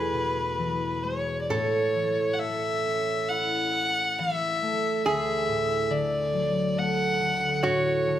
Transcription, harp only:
Already playing: E2 A3
0.13 B2
0.59 E3
1.04 G#3
1.50 A2
1.95 E3
2.39 A3
2.86 C#4
3.30 E4
4.19 E3
4.62 A3
5.06 D2
5.48 A2
5.90 D3
6.33 F#3
6.77 A3
7.20 D3
7.64 A2
8.07 D3

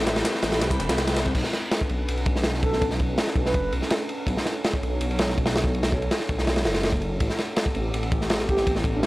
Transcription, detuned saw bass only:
Already playing: A1
0.43 A1
0.62 C2
0.80 E1
0.89 C2
1.35 B1
1.90 B1
2.08 B1
2.45 B1
3.36 B1
3.54 F#1
3.73 B1
4.27 B1
4.82 B1
5.01 B1
5.38 B1
6.29 B1
6.65 F#1
6.92 F#1
7.21 A1
7.75 A1
7.94 A1
8.30 A1

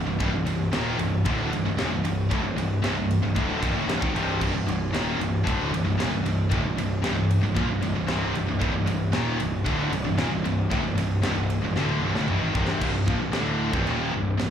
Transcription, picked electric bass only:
0.06 C1
0.20 C1
0.32 C1
0.46 C1
0.72 D#1
0.99 C1
1.27 D1
1.52 C1
1.65 C1
1.77 D#1
1.90 C1
2.05 C1
2.31 D1
2.43 C1
2.57 C1
2.83 C1
2.97 C1
3.22 C1
3.36 D1
3.63 C1
3.76 D1
3.88 C1
4.03 G#1
4.14 C1
4.41 C1
4.53 C1
4.65 C1
4.92 D#1
5.19 C1
5.47 D1
5.72 C1
5.85 C1
5.99 D#1
6.13 C1
6.25 C1
6.52 D1
6.65 C1
6.78 C1
7.06 C1
7.20 C1
7.45 C1
7.57 A#1
7.71 C1
7.82 C1
7.96 C1
8.08 C1
8.35 C1
8.47 C1
8.62 C1
8.74 C1
8.88 C1
9.13 D#1
9.41 C1
9.66 D1
9.92 C1
10.05 C1
10.18 D#1
10.31 C1
10.45 C1
10.72 D1
10.83 C1
10.97 C1
11.24 C1
11.36 C1
11.62 C1
11.76 D1
12.02 C1
12.16 D1
12.29 C1
12.43 G#1
12.55 C1
12.82 C1
12.96 C1
13.08 A#1
13.23 C1
13.35 D1
13.74 C1
13.87 D#1
14.14 C1
14.40 C1

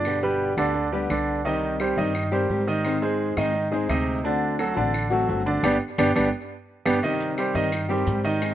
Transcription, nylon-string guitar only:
0.05 B2 D3 G3 B3 G4
0.57 D3 G3 B3 G4
0.75 muted nylon-string guitar stroke
0.92 D3 G3 B3 G4
1.10 G3 B3 G4
1.45 C3 D#3 G3 C4 G4
1.97 D#3 G3 C4 G4
2.15 muted nylon-string guitar stroke
2.32 D#3 G3 C4 G4
2.49 D#3 G3 C4 G4
2.84 D#3 G#3 C4 D#4 G#4
3.37 G#3 C4 D#4 G#4
3.54 muted nylon-string guitar stroke
3.71 G#3 C4 D#4 G#4
3.88 G#3 C4 D#4 G#4
4.24 D3 A3 C4 F#4
4.75 A3 C4 F#4
4.93 muted nylon-string guitar stroke
5.10 A3 C4 F#4
5.28 D3 A3 C4 F#4
5.63 G3 B3 D4
5.98 G3 B3 D4
6.15 G3 B3 D4
6.86 G3 B3 D4
7.03 C3 D#3 G3 C4 G4
7.55 D#3 G3 C4 G4
7.72 muted nylon-string guitar stroke
7.89 D#3 G3 C4 G4
8.06 D#3 G3 C4 G4
8.41 D#3 G#3 C4 D#4 G#4

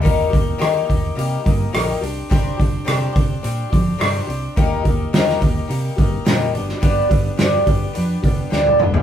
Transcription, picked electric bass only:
0.05 D#2
0.33 D#2
0.62 D#3
0.90 D#2
1.17 C3
1.46 G2
1.74 A#1
2.02 C2
2.31 C2
2.60 C2
2.88 C3
3.16 C2
3.44 A#2
3.73 F2
4.01 G2
4.28 C2
4.58 D#2
4.85 D#2
5.14 D#3
5.42 D#2
5.70 C3
5.98 G2
6.27 A#2
6.54 G1
6.82 G1
7.11 G1
7.40 G2
7.67 G1
7.97 F2
8.23 C2
8.52 D2
8.80 G1

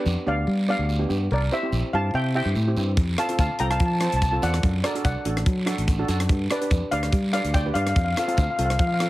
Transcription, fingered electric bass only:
0.06 F2
0.27 D2
0.47 G3
0.79 D2
1.10 G2
1.31 C2
1.72 A#1
1.93 G2
2.14 C3
2.45 G2
2.55 A2
2.76 G2
2.97 F2
3.38 D2
3.60 C2
3.80 F3
4.13 C2
4.43 E2
4.64 F#2
5.05 C2
5.25 A1
5.46 F#3
5.78 A1
6.09 F#2
6.29 G2
6.71 F2
6.92 D2
7.13 G3
7.44 D2
7.75 G2
7.96 F2
8.38 D2
8.59 C2
8.79 F3

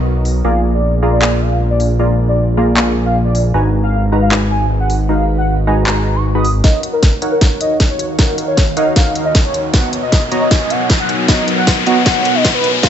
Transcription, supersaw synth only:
Already playing: B3 F#4 A#4 C#5 D#5
0.45 A#3 F4 G#4 D5 A#5
1.03 A#3 F4 G#4 D5 A#5
1.22 A#3 F4 G#4 D5 G#5
1.99 A#3 F4 G#4 D5 A#5
2.57 A#3 F4 G#4 D5 A#5
2.77 A#3 F4 G#4 D5 G#5
3.54 G#3 D#4 F#4 B4 A#5
4.12 G#3 D#4 F#4 B4 A#5
4.32 G#3 D#4 F#4 B4 G#5
5.09 G#3 D#4 F#4 B4 A#5
5.67 G#3 D#4 F#4 B4 A#5
5.86 G#3 D#4 F#4 B4 G#5
6.35 G#3 D#4 F#4 B4 B5
6.64 D#4 A#4 C#5 F5 F#5
7.22 D#4 A#4 C#5 F5 F#5
7.41 D#4 A#4 C#5 F5 F#5
8.19 D#4 A#4 C#5 F5 F#5
8.77 D#4 A#4 C#5 F5 F#5
8.96 D#4 A#4 C#5 F5 F#5
9.74 B3 F#4 C#5 D#5 A#5
10.32 B3 F#4 C#5 D#5 A#5
10.51 B3 F#4 C#5 D#5 G#5
11.28 B3 F#4 C#5 D#5 A#5
11.87 B3 F#4 C#5 D#5 A#5
12.06 B3 F#4 C#5 D#5 G#5
12.83 A#3 F4 G#4 D5 A#5

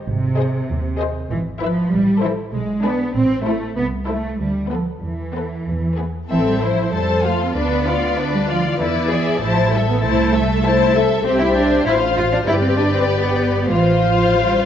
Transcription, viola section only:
0.39 G#4
1.01 G#4
1.61 E4
2.23 E4
2.85 D4
3.46 E4
4.08 E4
4.71 B3
5.35 B3
5.99 B3
6.30 C4
6.62 E4
6.93 A4
7.26 F4
7.56 D4
7.87 F4
8.18 D4
8.49 F4
8.80 E4
9.11 G#4
9.42 E4
9.73 A4
10.03 E4
10.34 A4
10.65 E4
10.95 A4
11.25 G4
11.87 F4
12.48 G4
13.72 F4

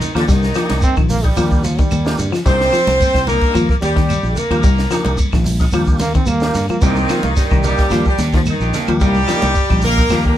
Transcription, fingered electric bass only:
0.15 D#2
0.29 C2
0.71 C2
0.97 A#1
1.38 D#2
1.92 D#2
2.19 G2
2.46 C2
2.87 C2
3.15 C2
3.55 D#2
3.82 D#2
4.23 A#1
4.50 D#2
4.64 C2
5.05 C2
5.33 A#1
5.73 D#2
6.27 D#2
6.55 G2
6.82 C2
7.23 C2
7.51 C2
7.92 D#2
8.18 D#2
8.60 A#1
8.88 D#2
9.02 C2
9.43 C2
9.70 A#1
10.10 D#2

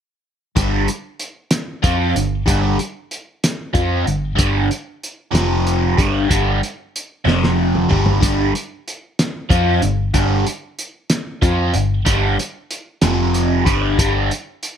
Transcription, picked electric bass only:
0.57 G1
1.84 F2
2.15 G1
2.48 G1
3.75 F2
4.06 G1
4.39 G1
5.34 F1
5.98 G1
6.31 G1
7.26 F1
7.90 G1
8.22 G1
9.50 F2
9.83 G1
10.14 G1
11.43 F2
11.75 G1
12.07 G1
13.03 F1
13.67 G1
13.99 G1

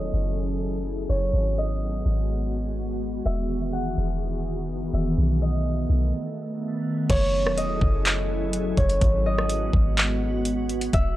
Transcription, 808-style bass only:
Already playing: E1
0.13 F#1
1.09 F#1
1.34 G#1
2.06 G#1
3.26 E1
3.97 E1
4.69 F#1
4.82 E1
4.93 E1
5.18 B1
5.89 B1
7.10 F#1
7.46 E1
7.81 F#1
8.78 F#1
9.01 G#1
9.73 G#1
10.93 E1

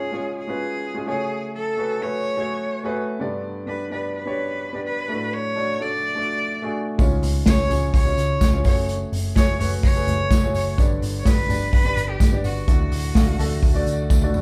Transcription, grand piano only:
Already playing: G#2 G#3 C#4 F4 C#5
0.12 G#3 C#4 F4 C#5
0.47 G#3 C#4 F4 B4
0.94 G#3 C#4 F4 G#4
1.06 C#3 A3 F#4 G#4 C#5
1.77 A3 F#4 G#4 B4
2.01 A3 F#4 G#4 B4
2.36 A3 F#4 G#4 C#5
2.84 A3 F#4 G#4 B4
3.19 G2 D3 B3 D4 G4 D5
3.66 B3 D4 G4 D5
3.90 B3 D4 G4 D5
4.25 B3 D4 G4 C#5
4.73 B3 D4 G4 D5
5.08 A2 A3 D4 F#4 D5
5.55 A3 D4 F#4 D5
5.79 A3 D4 F#4 A4
6.15 A3 D4 F#4 D5
6.62 A3 D4 F#4 G#4
6.98 G#2 G#3 C#4 F4 C#5
7.46 G#3 C#4 F4 C#5
7.70 G#3 C#4 F4 G#4
8.05 G#3 C#4 F4 C#5
8.52 G#3 C#4 F4 C#5
8.64 C#3 A3 F#4 G#4 C#5
9.35 A3 F#4 G#4 C#5
9.59 A3 F#4 G#4 B4
9.95 A3 F#4 G#4 B4
10.42 A3 F#4 G#4 C#5
10.78 G2 D3 B3 D4 G4 D5
11.25 B3 D4 G4 D5
11.48 B3 D4 G4 D5
11.84 B3 D4 G4 D5
12.32 B3 D4 G4 D5
12.67 A2 A3 D4 F#4 D5
13.15 A3 D4 F#4 F5
13.39 A3 D4 F#4 A4
13.74 A3 D4 F#4 D5
14.22 A3 D4 F#4 D5

